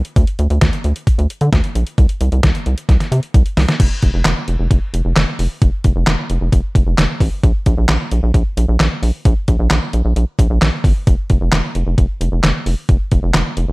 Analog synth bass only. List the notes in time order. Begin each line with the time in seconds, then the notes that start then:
0.16 D2
0.39 D2
0.50 D2
0.62 D2
0.84 D2
1.18 D2
1.41 D3
1.53 D2
1.75 A#1
1.98 C2
2.21 C2
2.32 C2
2.43 C2
2.66 C2
2.89 C2
3.12 C3
3.34 C2
3.57 C2
3.80 F1
4.03 F1
4.14 F1
4.25 F1
4.48 F1
4.59 F1
4.71 F1
4.94 F1
5.05 F1
5.16 F1
5.39 F1
5.62 F1
5.85 F1
5.96 F1
6.07 F1
6.30 F1
6.41 F1
6.52 F1
6.75 F1
6.87 F1
6.98 F1
7.20 A1
7.44 A#1
7.66 A#1
7.78 A#1
7.89 A#1
8.12 A#1
8.23 A#1
8.34 A#1
8.57 A#1
8.68 A#1
8.80 A#1
9.03 A#1
9.25 A#1
9.48 A#1
9.59 A#1
9.71 A#1
9.93 A#1
10.05 A#1
10.16 A#1
10.39 A#1
10.50 A#1
10.62 A#1
10.84 G1
11.07 F1
11.30 F1
11.41 F1
11.53 F1
11.75 F1
11.87 F1
11.98 F1
12.21 F1
12.32 F1
12.43 F1
12.66 F1
12.89 F1
13.12 F1
13.23 F1
13.34 F1
13.57 F1
13.69 F1